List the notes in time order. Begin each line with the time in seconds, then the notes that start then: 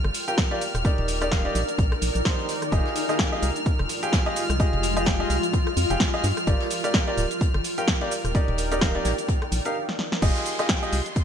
Already playing: F4 A#4 D5 G5 F6
0.04 G1, cross-stick, closed hi-hat
0.14 closed hi-hat, open hi-hat, shaker
0.28 F4 G4 A#4 G5, closed hi-hat, shaker
0.38 kick, snare, closed hi-hat, shaker
0.51 F4 G4 A#4 D5, closed hi-hat
0.61 D#4, closed hi-hat, open hi-hat, shaker
0.75 D#1, cross-stick, closed hi-hat, shaker
0.85 D#4 G4 A#4 D5, kick, closed hi-hat, shaker
0.98 D#1, closed hi-hat
1.08 closed hi-hat, open hi-hat, shaker
1.22 D#4 G4 A#4 D5, cross-stick, closed hi-hat, shaker
1.31 D#4 G4 A#4 F5, kick, snare, closed hi-hat, shaker
1.45 D#4 G4 A#4 D5, closed hi-hat
1.55 A#1, snare, closed hi-hat, open hi-hat, shaker
1.68 closed hi-hat, shaker
1.78 A#1, kick, closed hi-hat, shaker
1.92 cross-stick, closed hi-hat
2.02 A#1, closed hi-hat, open hi-hat, shaker
2.15 A#1, closed hi-hat, shaker
2.25 D#4 G4 A#4 C5, kick, snare, closed hi-hat, shaker
2.39 closed hi-hat
2.48 snare, closed hi-hat, open hi-hat, shaker
2.62 cross-stick, closed hi-hat, shaker
2.72 F1 F4 G4 G#4 D#5 F6, kick, closed hi-hat, shaker
2.85 G#3, snare, closed hi-hat
2.96 closed hi-hat, open hi-hat, shaker
3.09 F4 G4 G#4 D#5, cross-stick, snare, closed hi-hat, shaker
3.19 F4 G4 G#4 G5, kick, snare, closed hi-hat, shaker
3.32 F4 G4 G#4 D#5, closed hi-hat
3.42 C2, closed hi-hat, open hi-hat, shaker
3.51 D#5
3.56 closed hi-hat, shaker
3.66 kick, closed hi-hat, shaker
3.79 F1, cross-stick, closed hi-hat
3.89 closed hi-hat, open hi-hat, shaker
4.03 F4 G4 G#4 G5, closed hi-hat, shaker
4.13 kick, snare, closed hi-hat, shaker
4.26 F4 G4 G#4 D#5, closed hi-hat
4.36 closed hi-hat, open hi-hat, shaker
4.50 C2, cross-stick, closed hi-hat, shaker
4.60 F4 G4 G#4 D#5, kick, closed hi-hat, shaker
4.73 F1, closed hi-hat
4.83 closed hi-hat, open hi-hat, shaker
4.97 F4 G4 G#4 D#5, cross-stick, closed hi-hat, shaker
5.06 F4 G4 G#4 G5, kick, snare, closed hi-hat, shaker
5.20 F4 G4 G#4 D#5, closed hi-hat
5.29 C2, snare, closed hi-hat, open hi-hat, shaker
5.43 closed hi-hat, shaker
5.53 kick, closed hi-hat, shaker
5.67 cross-stick, closed hi-hat
5.77 F2, closed hi-hat, open hi-hat, shaker
5.90 F1 F4 G4 G#4 G5, closed hi-hat, shaker
6.00 kick, snare, closed hi-hat, shaker
6.13 F4 G4 G#4 D#5, closed hi-hat
6.24 G2, snare, closed hi-hat, open hi-hat, shaker
6.37 cross-stick, closed hi-hat, shaker
6.47 G1 F4 G4 A#4 D5, kick, closed hi-hat, shaker
6.58 A#4, snare, closed hi-hat
6.65 G5
6.70 closed hi-hat, open hi-hat, shaker
6.84 F4 G4 A#4 D5, cross-stick, snare, closed hi-hat, shaker
6.94 F4 G4 A#4 G5, kick, snare, closed hi-hat, shaker
7.07 F4 G4 A#4 D5, closed hi-hat
7.18 D1, closed hi-hat, open hi-hat, shaker
7.31 closed hi-hat, shaker
7.41 kick, closed hi-hat, shaker
7.54 G1, cross-stick, closed hi-hat
7.64 closed hi-hat, open hi-hat, shaker
7.78 F4 G4 A#4 G5, closed hi-hat, shaker
7.88 kick, snare, closed hi-hat, shaker
8.01 F4 G4 A#4 D5, closed hi-hat
8.11 D#4, closed hi-hat, open hi-hat, shaker
8.25 D#1, cross-stick, closed hi-hat, shaker
8.35 D#4 G4 A#4 D5, kick, closed hi-hat, shaker
8.48 D#1, closed hi-hat
8.57 closed hi-hat, open hi-hat, shaker
8.72 D#4 G4 A#4 D5, cross-stick, closed hi-hat, shaker
8.81 D#4 G4 A#4 F5, kick, snare, closed hi-hat, shaker
8.95 D#4 G4 A#4 D5, closed hi-hat
9.05 A#1, snare, closed hi-hat, open hi-hat, shaker
9.18 closed hi-hat, shaker
9.29 kick, closed hi-hat, shaker
9.42 cross-stick, closed hi-hat
9.52 A#1, closed hi-hat, open hi-hat, shaker
9.65 D#4 G4 A#4 F5, closed hi-hat, shaker
9.89 snare
9.99 snare
10.12 snare
10.22 F1 F4 G4 G#4 D#5 C6, kick, closed hi-hat, crash, downlifter, shaker
10.36 snare, closed hi-hat, shaker
10.46 closed hi-hat, open hi-hat, shaker
10.59 F4 G4 G#4 D#5, cross-stick, snare, closed hi-hat, shaker
10.69 F4 G4 G#4 G5, kick, snare, closed hi-hat, shaker
10.83 F4 G4 G#4 D#5, closed hi-hat, shaker
10.92 C2, closed hi-hat, open hi-hat, shaker
11.06 closed hi-hat, shaker
11.15 kick, closed hi-hat, shaker